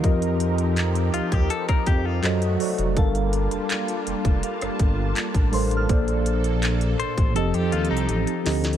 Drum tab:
HH |x-----x-----x-----x-----x-----x-----x-----x-----x-----x-----x-----------x-----x-----o-----x-----|x-----x-----x-----x-----x-----x-----x-----x-----x-----x-----x-----------x-----x-----o-----x-----|x-----x-----x-----x-----x-----x-----x-----x-----x-----x-----x---x---x---x-----x-----o-----x--x--|
CP |------------------------x-----------------------------------------------x-----------------------|------------------------x-----------------------------------------------x-----------------------|------------------------x-----------------------------------------------------------------------|
SD |------------------------------------------------------r-----------------------------------------|------------------------------------------------------r-----------------------------------------|------------------------------------------------------------------------------------o-----o-----|
BD |o-----------------------------------------o-----------o-----o-----------------------------------|o-----------------------------------------o-----------------o-----------------o-----------------|o-----------------------------------------o-----------------------------------------------------|